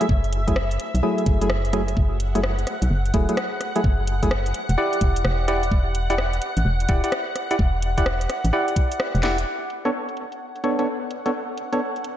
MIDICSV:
0, 0, Header, 1, 5, 480
1, 0, Start_track
1, 0, Key_signature, 2, "minor"
1, 0, Tempo, 468750
1, 93, Time_signature, 4, 2, 24, 8
1, 12461, End_track
2, 0, Start_track
2, 0, Title_t, "String machine"
2, 0, Program_c, 0, 50
2, 0, Note_on_c, 0, 76, 78
2, 2015, Note_on_c, 0, 78, 80
2, 2025, Note_off_c, 0, 76, 0
2, 9683, Note_off_c, 0, 78, 0
2, 9696, Note_on_c, 0, 78, 77
2, 12461, Note_off_c, 0, 78, 0
2, 12461, End_track
3, 0, Start_track
3, 0, Title_t, "Synth stab"
3, 0, Program_c, 1, 62
3, 7, Note_on_c, 1, 54, 83
3, 7, Note_on_c, 1, 57, 75
3, 7, Note_on_c, 1, 64, 75
3, 7, Note_on_c, 1, 68, 89
3, 58, Note_off_c, 1, 54, 0
3, 58, Note_off_c, 1, 57, 0
3, 58, Note_off_c, 1, 64, 0
3, 58, Note_off_c, 1, 68, 0
3, 487, Note_on_c, 1, 54, 79
3, 487, Note_on_c, 1, 57, 70
3, 487, Note_on_c, 1, 64, 76
3, 487, Note_on_c, 1, 68, 86
3, 568, Note_off_c, 1, 54, 0
3, 568, Note_off_c, 1, 57, 0
3, 568, Note_off_c, 1, 64, 0
3, 568, Note_off_c, 1, 68, 0
3, 1054, Note_on_c, 1, 54, 84
3, 1054, Note_on_c, 1, 57, 79
3, 1054, Note_on_c, 1, 64, 80
3, 1054, Note_on_c, 1, 68, 92
3, 1417, Note_off_c, 1, 64, 0
3, 1418, Note_off_c, 1, 54, 0
3, 1418, Note_off_c, 1, 57, 0
3, 1418, Note_off_c, 1, 68, 0
3, 1448, Note_on_c, 1, 68, 89
3, 1449, Note_on_c, 1, 54, 82
3, 1449, Note_on_c, 1, 57, 71
3, 1449, Note_on_c, 1, 64, 73
3, 1529, Note_off_c, 1, 54, 0
3, 1529, Note_off_c, 1, 57, 0
3, 1529, Note_off_c, 1, 64, 0
3, 1529, Note_off_c, 1, 68, 0
3, 1773, Note_on_c, 1, 54, 95
3, 1773, Note_on_c, 1, 57, 87
3, 1773, Note_on_c, 1, 64, 85
3, 1773, Note_on_c, 1, 68, 105
3, 1864, Note_off_c, 1, 54, 0
3, 1865, Note_off_c, 1, 57, 0
3, 1865, Note_off_c, 1, 64, 0
3, 1865, Note_off_c, 1, 68, 0
3, 2407, Note_on_c, 1, 57, 89
3, 2407, Note_on_c, 1, 64, 92
3, 2407, Note_on_c, 1, 68, 107
3, 2408, Note_on_c, 1, 54, 98
3, 2458, Note_off_c, 1, 54, 0
3, 2458, Note_off_c, 1, 57, 0
3, 2458, Note_off_c, 1, 64, 0
3, 2458, Note_off_c, 1, 68, 0
3, 3213, Note_on_c, 1, 54, 79
3, 3213, Note_on_c, 1, 64, 73
3, 3214, Note_on_c, 1, 57, 72
3, 3214, Note_on_c, 1, 68, 86
3, 3345, Note_off_c, 1, 54, 0
3, 3345, Note_off_c, 1, 57, 0
3, 3345, Note_off_c, 1, 64, 0
3, 3345, Note_off_c, 1, 68, 0
3, 3367, Note_on_c, 1, 54, 81
3, 3368, Note_on_c, 1, 64, 71
3, 3369, Note_on_c, 1, 57, 73
3, 3369, Note_on_c, 1, 68, 86
3, 3448, Note_off_c, 1, 54, 0
3, 3449, Note_off_c, 1, 57, 0
3, 3449, Note_off_c, 1, 64, 0
3, 3449, Note_off_c, 1, 68, 0
3, 3847, Note_on_c, 1, 54, 85
3, 3847, Note_on_c, 1, 57, 77
3, 3847, Note_on_c, 1, 64, 75
3, 3847, Note_on_c, 1, 68, 91
3, 3898, Note_off_c, 1, 54, 0
3, 3898, Note_off_c, 1, 57, 0
3, 3898, Note_off_c, 1, 64, 0
3, 3898, Note_off_c, 1, 68, 0
3, 4328, Note_on_c, 1, 54, 78
3, 4328, Note_on_c, 1, 57, 72
3, 4328, Note_on_c, 1, 64, 75
3, 4328, Note_on_c, 1, 68, 88
3, 4409, Note_off_c, 1, 54, 0
3, 4409, Note_off_c, 1, 57, 0
3, 4409, Note_off_c, 1, 64, 0
3, 4409, Note_off_c, 1, 68, 0
3, 4891, Note_on_c, 1, 74, 77
3, 4892, Note_on_c, 1, 64, 86
3, 4892, Note_on_c, 1, 67, 78
3, 4892, Note_on_c, 1, 78, 93
3, 5592, Note_off_c, 1, 67, 0
3, 5592, Note_off_c, 1, 74, 0
3, 5592, Note_off_c, 1, 78, 0
3, 5593, Note_off_c, 1, 64, 0
3, 5610, Note_on_c, 1, 64, 98
3, 5611, Note_on_c, 1, 67, 91
3, 5611, Note_on_c, 1, 74, 91
3, 5611, Note_on_c, 1, 78, 105
3, 5758, Note_off_c, 1, 64, 0
3, 5758, Note_off_c, 1, 74, 0
3, 5758, Note_off_c, 1, 78, 0
3, 5759, Note_off_c, 1, 67, 0
3, 6246, Note_on_c, 1, 64, 101
3, 6246, Note_on_c, 1, 74, 88
3, 6246, Note_on_c, 1, 78, 107
3, 6247, Note_on_c, 1, 67, 92
3, 6297, Note_off_c, 1, 74, 0
3, 6298, Note_off_c, 1, 64, 0
3, 6298, Note_off_c, 1, 67, 0
3, 6298, Note_off_c, 1, 78, 0
3, 7052, Note_on_c, 1, 64, 79
3, 7052, Note_on_c, 1, 67, 72
3, 7052, Note_on_c, 1, 74, 72
3, 7052, Note_on_c, 1, 78, 88
3, 7184, Note_off_c, 1, 64, 0
3, 7184, Note_off_c, 1, 67, 0
3, 7184, Note_off_c, 1, 74, 0
3, 7184, Note_off_c, 1, 78, 0
3, 7207, Note_on_c, 1, 64, 79
3, 7207, Note_on_c, 1, 78, 85
3, 7208, Note_on_c, 1, 67, 72
3, 7208, Note_on_c, 1, 74, 72
3, 7288, Note_off_c, 1, 64, 0
3, 7288, Note_off_c, 1, 78, 0
3, 7289, Note_off_c, 1, 67, 0
3, 7289, Note_off_c, 1, 74, 0
3, 7688, Note_on_c, 1, 64, 82
3, 7688, Note_on_c, 1, 67, 76
3, 7688, Note_on_c, 1, 74, 75
3, 7688, Note_on_c, 1, 78, 93
3, 7738, Note_off_c, 1, 67, 0
3, 7738, Note_off_c, 1, 74, 0
3, 7739, Note_off_c, 1, 64, 0
3, 7739, Note_off_c, 1, 78, 0
3, 8167, Note_on_c, 1, 64, 80
3, 8167, Note_on_c, 1, 67, 72
3, 8167, Note_on_c, 1, 74, 73
3, 8167, Note_on_c, 1, 78, 92
3, 8248, Note_off_c, 1, 64, 0
3, 8248, Note_off_c, 1, 67, 0
3, 8248, Note_off_c, 1, 78, 0
3, 8249, Note_off_c, 1, 74, 0
3, 8733, Note_on_c, 1, 74, 76
3, 8734, Note_on_c, 1, 64, 85
3, 8734, Note_on_c, 1, 67, 80
3, 8734, Note_on_c, 1, 78, 96
3, 9433, Note_off_c, 1, 64, 0
3, 9433, Note_off_c, 1, 67, 0
3, 9433, Note_off_c, 1, 74, 0
3, 9433, Note_off_c, 1, 78, 0
3, 9453, Note_on_c, 1, 64, 98
3, 9453, Note_on_c, 1, 67, 87
3, 9453, Note_on_c, 1, 74, 89
3, 9453, Note_on_c, 1, 78, 110
3, 9599, Note_off_c, 1, 64, 0
3, 9599, Note_off_c, 1, 67, 0
3, 9599, Note_off_c, 1, 74, 0
3, 9599, Note_off_c, 1, 78, 0
3, 10088, Note_on_c, 1, 59, 91
3, 10088, Note_on_c, 1, 62, 85
3, 10088, Note_on_c, 1, 69, 85
3, 10088, Note_on_c, 1, 73, 101
3, 10139, Note_off_c, 1, 59, 0
3, 10139, Note_off_c, 1, 62, 0
3, 10139, Note_off_c, 1, 69, 0
3, 10139, Note_off_c, 1, 73, 0
3, 10892, Note_on_c, 1, 59, 73
3, 10892, Note_on_c, 1, 62, 71
3, 10892, Note_on_c, 1, 69, 68
3, 10892, Note_on_c, 1, 73, 85
3, 11024, Note_off_c, 1, 59, 0
3, 11024, Note_off_c, 1, 62, 0
3, 11024, Note_off_c, 1, 69, 0
3, 11024, Note_off_c, 1, 73, 0
3, 11047, Note_on_c, 1, 62, 69
3, 11047, Note_on_c, 1, 69, 69
3, 11048, Note_on_c, 1, 59, 75
3, 11048, Note_on_c, 1, 73, 83
3, 11128, Note_off_c, 1, 62, 0
3, 11129, Note_off_c, 1, 59, 0
3, 11129, Note_off_c, 1, 69, 0
3, 11129, Note_off_c, 1, 73, 0
3, 11527, Note_on_c, 1, 59, 78
3, 11527, Note_on_c, 1, 69, 72
3, 11528, Note_on_c, 1, 62, 72
3, 11528, Note_on_c, 1, 73, 86
3, 11578, Note_off_c, 1, 59, 0
3, 11578, Note_off_c, 1, 62, 0
3, 11578, Note_off_c, 1, 69, 0
3, 11579, Note_off_c, 1, 73, 0
3, 12006, Note_on_c, 1, 73, 84
3, 12007, Note_on_c, 1, 62, 70
3, 12007, Note_on_c, 1, 69, 69
3, 12008, Note_on_c, 1, 59, 77
3, 12088, Note_off_c, 1, 62, 0
3, 12088, Note_off_c, 1, 73, 0
3, 12089, Note_off_c, 1, 59, 0
3, 12089, Note_off_c, 1, 69, 0
3, 12461, End_track
4, 0, Start_track
4, 0, Title_t, "FM bass"
4, 0, Program_c, 2, 39
4, 95, Note_on_c, 2, 30, 102
4, 800, Note_off_c, 2, 30, 0
4, 968, Note_on_c, 2, 35, 94
4, 1045, Note_off_c, 2, 35, 0
4, 1295, Note_on_c, 2, 30, 92
4, 2000, Note_off_c, 2, 30, 0
4, 2016, Note_on_c, 2, 30, 98
4, 2720, Note_off_c, 2, 30, 0
4, 2888, Note_on_c, 2, 35, 95
4, 2965, Note_off_c, 2, 35, 0
4, 2974, Note_on_c, 2, 30, 105
4, 3196, Note_off_c, 2, 30, 0
4, 3215, Note_on_c, 2, 28, 97
4, 3353, Note_off_c, 2, 28, 0
4, 3933, Note_on_c, 2, 30, 97
4, 4639, Note_off_c, 2, 30, 0
4, 4806, Note_on_c, 2, 28, 97
4, 4884, Note_off_c, 2, 28, 0
4, 5133, Note_on_c, 2, 28, 99
4, 5356, Note_off_c, 2, 28, 0
4, 5372, Note_on_c, 2, 28, 98
4, 5839, Note_off_c, 2, 28, 0
4, 5853, Note_on_c, 2, 28, 101
4, 6559, Note_off_c, 2, 28, 0
4, 6727, Note_on_c, 2, 33, 96
4, 6804, Note_off_c, 2, 33, 0
4, 6812, Note_on_c, 2, 28, 107
4, 7035, Note_off_c, 2, 28, 0
4, 7054, Note_on_c, 2, 26, 96
4, 7192, Note_off_c, 2, 26, 0
4, 7774, Note_on_c, 2, 28, 101
4, 8480, Note_off_c, 2, 28, 0
4, 8649, Note_on_c, 2, 33, 96
4, 8725, Note_off_c, 2, 33, 0
4, 9368, Note_on_c, 2, 28, 91
4, 9679, Note_off_c, 2, 28, 0
4, 12461, End_track
5, 0, Start_track
5, 0, Title_t, "Drums"
5, 9, Note_on_c, 9, 42, 61
5, 95, Note_on_c, 9, 36, 126
5, 112, Note_off_c, 9, 42, 0
5, 197, Note_off_c, 9, 36, 0
5, 248, Note_on_c, 9, 42, 35
5, 333, Note_off_c, 9, 42, 0
5, 333, Note_on_c, 9, 42, 103
5, 436, Note_off_c, 9, 42, 0
5, 488, Note_on_c, 9, 42, 63
5, 489, Note_on_c, 9, 36, 65
5, 574, Note_on_c, 9, 37, 118
5, 590, Note_off_c, 9, 42, 0
5, 592, Note_off_c, 9, 36, 0
5, 676, Note_off_c, 9, 37, 0
5, 729, Note_on_c, 9, 42, 50
5, 815, Note_off_c, 9, 42, 0
5, 815, Note_on_c, 9, 42, 106
5, 917, Note_off_c, 9, 42, 0
5, 970, Note_on_c, 9, 42, 64
5, 1073, Note_off_c, 9, 42, 0
5, 1210, Note_on_c, 9, 42, 51
5, 1294, Note_off_c, 9, 42, 0
5, 1294, Note_on_c, 9, 42, 96
5, 1295, Note_on_c, 9, 36, 108
5, 1396, Note_off_c, 9, 42, 0
5, 1398, Note_off_c, 9, 36, 0
5, 1449, Note_on_c, 9, 42, 60
5, 1532, Note_on_c, 9, 37, 116
5, 1551, Note_off_c, 9, 42, 0
5, 1635, Note_off_c, 9, 37, 0
5, 1688, Note_on_c, 9, 42, 34
5, 1773, Note_off_c, 9, 42, 0
5, 1773, Note_on_c, 9, 37, 53
5, 1773, Note_on_c, 9, 42, 101
5, 1876, Note_off_c, 9, 37, 0
5, 1876, Note_off_c, 9, 42, 0
5, 1928, Note_on_c, 9, 37, 30
5, 1928, Note_on_c, 9, 42, 62
5, 2015, Note_on_c, 9, 36, 118
5, 2030, Note_off_c, 9, 37, 0
5, 2030, Note_off_c, 9, 42, 0
5, 2117, Note_off_c, 9, 36, 0
5, 2253, Note_on_c, 9, 42, 103
5, 2355, Note_off_c, 9, 42, 0
5, 2408, Note_on_c, 9, 42, 65
5, 2494, Note_on_c, 9, 37, 116
5, 2511, Note_off_c, 9, 42, 0
5, 2596, Note_off_c, 9, 37, 0
5, 2648, Note_on_c, 9, 42, 51
5, 2733, Note_off_c, 9, 42, 0
5, 2733, Note_on_c, 9, 37, 65
5, 2733, Note_on_c, 9, 42, 106
5, 2835, Note_off_c, 9, 37, 0
5, 2835, Note_off_c, 9, 42, 0
5, 2888, Note_on_c, 9, 42, 67
5, 2990, Note_off_c, 9, 42, 0
5, 3128, Note_on_c, 9, 42, 52
5, 3212, Note_off_c, 9, 42, 0
5, 3212, Note_on_c, 9, 42, 93
5, 3215, Note_on_c, 9, 36, 107
5, 3315, Note_off_c, 9, 42, 0
5, 3317, Note_off_c, 9, 36, 0
5, 3368, Note_on_c, 9, 42, 66
5, 3453, Note_off_c, 9, 42, 0
5, 3453, Note_on_c, 9, 37, 113
5, 3453, Note_on_c, 9, 42, 57
5, 3555, Note_off_c, 9, 37, 0
5, 3555, Note_off_c, 9, 42, 0
5, 3693, Note_on_c, 9, 37, 53
5, 3693, Note_on_c, 9, 42, 102
5, 3795, Note_off_c, 9, 37, 0
5, 3795, Note_off_c, 9, 42, 0
5, 3847, Note_on_c, 9, 42, 67
5, 3934, Note_on_c, 9, 36, 114
5, 3949, Note_off_c, 9, 42, 0
5, 4037, Note_off_c, 9, 36, 0
5, 4172, Note_on_c, 9, 42, 105
5, 4275, Note_off_c, 9, 42, 0
5, 4328, Note_on_c, 9, 36, 58
5, 4328, Note_on_c, 9, 42, 66
5, 4413, Note_on_c, 9, 37, 113
5, 4430, Note_off_c, 9, 42, 0
5, 4431, Note_off_c, 9, 36, 0
5, 4516, Note_off_c, 9, 37, 0
5, 4568, Note_on_c, 9, 42, 54
5, 4652, Note_off_c, 9, 42, 0
5, 4652, Note_on_c, 9, 42, 109
5, 4755, Note_off_c, 9, 42, 0
5, 4806, Note_on_c, 9, 42, 71
5, 4909, Note_off_c, 9, 42, 0
5, 5047, Note_on_c, 9, 42, 54
5, 5132, Note_off_c, 9, 42, 0
5, 5132, Note_on_c, 9, 42, 101
5, 5133, Note_on_c, 9, 36, 100
5, 5234, Note_off_c, 9, 42, 0
5, 5235, Note_off_c, 9, 36, 0
5, 5287, Note_on_c, 9, 42, 67
5, 5372, Note_on_c, 9, 37, 116
5, 5389, Note_off_c, 9, 42, 0
5, 5474, Note_off_c, 9, 37, 0
5, 5612, Note_on_c, 9, 37, 53
5, 5612, Note_on_c, 9, 42, 107
5, 5714, Note_off_c, 9, 37, 0
5, 5714, Note_off_c, 9, 42, 0
5, 5766, Note_on_c, 9, 42, 67
5, 5853, Note_on_c, 9, 36, 112
5, 5869, Note_off_c, 9, 42, 0
5, 5955, Note_off_c, 9, 36, 0
5, 6091, Note_on_c, 9, 42, 106
5, 6193, Note_off_c, 9, 42, 0
5, 6246, Note_on_c, 9, 42, 69
5, 6331, Note_on_c, 9, 37, 108
5, 6348, Note_off_c, 9, 42, 0
5, 6434, Note_off_c, 9, 37, 0
5, 6486, Note_on_c, 9, 42, 56
5, 6570, Note_off_c, 9, 42, 0
5, 6570, Note_on_c, 9, 42, 111
5, 6673, Note_off_c, 9, 42, 0
5, 6725, Note_on_c, 9, 42, 72
5, 6828, Note_off_c, 9, 42, 0
5, 6966, Note_on_c, 9, 42, 53
5, 7051, Note_off_c, 9, 42, 0
5, 7051, Note_on_c, 9, 42, 106
5, 7053, Note_on_c, 9, 36, 103
5, 7153, Note_off_c, 9, 42, 0
5, 7156, Note_off_c, 9, 36, 0
5, 7207, Note_on_c, 9, 42, 68
5, 7292, Note_off_c, 9, 42, 0
5, 7292, Note_on_c, 9, 37, 113
5, 7292, Note_on_c, 9, 42, 61
5, 7394, Note_off_c, 9, 37, 0
5, 7394, Note_off_c, 9, 42, 0
5, 7532, Note_on_c, 9, 37, 55
5, 7532, Note_on_c, 9, 42, 109
5, 7635, Note_off_c, 9, 37, 0
5, 7635, Note_off_c, 9, 42, 0
5, 7687, Note_on_c, 9, 42, 69
5, 7774, Note_on_c, 9, 36, 110
5, 7790, Note_off_c, 9, 42, 0
5, 7876, Note_off_c, 9, 36, 0
5, 8012, Note_on_c, 9, 42, 112
5, 8114, Note_off_c, 9, 42, 0
5, 8167, Note_on_c, 9, 42, 67
5, 8168, Note_on_c, 9, 36, 61
5, 8253, Note_on_c, 9, 37, 116
5, 8270, Note_off_c, 9, 42, 0
5, 8271, Note_off_c, 9, 36, 0
5, 8356, Note_off_c, 9, 37, 0
5, 8409, Note_on_c, 9, 42, 53
5, 8494, Note_off_c, 9, 42, 0
5, 8494, Note_on_c, 9, 37, 71
5, 8494, Note_on_c, 9, 42, 116
5, 8597, Note_off_c, 9, 37, 0
5, 8597, Note_off_c, 9, 42, 0
5, 8648, Note_on_c, 9, 42, 68
5, 8751, Note_off_c, 9, 42, 0
5, 8889, Note_on_c, 9, 42, 52
5, 8973, Note_on_c, 9, 36, 102
5, 8974, Note_off_c, 9, 42, 0
5, 8974, Note_on_c, 9, 42, 105
5, 9076, Note_off_c, 9, 36, 0
5, 9077, Note_off_c, 9, 42, 0
5, 9129, Note_on_c, 9, 42, 68
5, 9213, Note_on_c, 9, 37, 117
5, 9232, Note_off_c, 9, 42, 0
5, 9315, Note_off_c, 9, 37, 0
5, 9369, Note_on_c, 9, 42, 37
5, 9453, Note_off_c, 9, 42, 0
5, 9453, Note_on_c, 9, 38, 93
5, 9453, Note_on_c, 9, 42, 111
5, 9556, Note_off_c, 9, 38, 0
5, 9556, Note_off_c, 9, 42, 0
5, 9609, Note_on_c, 9, 42, 66
5, 9711, Note_off_c, 9, 42, 0
5, 9934, Note_on_c, 9, 42, 101
5, 10036, Note_off_c, 9, 42, 0
5, 10088, Note_on_c, 9, 42, 58
5, 10190, Note_off_c, 9, 42, 0
5, 10329, Note_on_c, 9, 42, 48
5, 10413, Note_off_c, 9, 42, 0
5, 10413, Note_on_c, 9, 42, 100
5, 10515, Note_off_c, 9, 42, 0
5, 10568, Note_on_c, 9, 42, 61
5, 10670, Note_off_c, 9, 42, 0
5, 10809, Note_on_c, 9, 42, 48
5, 10893, Note_off_c, 9, 42, 0
5, 10893, Note_on_c, 9, 42, 94
5, 10996, Note_off_c, 9, 42, 0
5, 11049, Note_on_c, 9, 42, 58
5, 11151, Note_off_c, 9, 42, 0
5, 11373, Note_on_c, 9, 42, 97
5, 11475, Note_off_c, 9, 42, 0
5, 11527, Note_on_c, 9, 42, 61
5, 11630, Note_off_c, 9, 42, 0
5, 11853, Note_on_c, 9, 42, 97
5, 11955, Note_off_c, 9, 42, 0
5, 12008, Note_on_c, 9, 42, 56
5, 12110, Note_off_c, 9, 42, 0
5, 12248, Note_on_c, 9, 42, 47
5, 12333, Note_off_c, 9, 42, 0
5, 12333, Note_on_c, 9, 42, 99
5, 12435, Note_off_c, 9, 42, 0
5, 12461, End_track
0, 0, End_of_file